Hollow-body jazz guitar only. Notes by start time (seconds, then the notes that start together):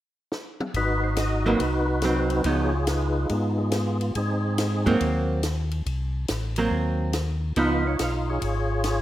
1.46 F#3 A#3 C4
2.04 F#3 C4
2.45 F3 B3 D#4
4.86 F#3 A#3 C4
6.58 F#3 A#3 C4
7.57 F3 B3 D#4